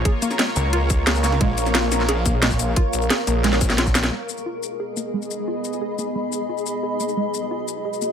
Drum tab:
HH |x-x-x-x-x-x-x-x-|x-x-x-x-x-x-x-x-|x-x-x-x-x-x-x-x-|----------------|
SH |--xx--x---x--xx-|--xx--x---x--xx-|--xx--x---xx-xx-|--xx--x---x--xx-|
SD |---oo-------o-oo|---oo-ooo---o---|----o---oo-oo-oo|----------------|
BD |o---------o-----|o---------o--o--|o---------o--o--|----------------|

HH |----------------|----------------|
SH |--xx--x---x--xx-|--xx--x---x--xx-|
SD |----------------|----------------|
BD |----------------|----------------|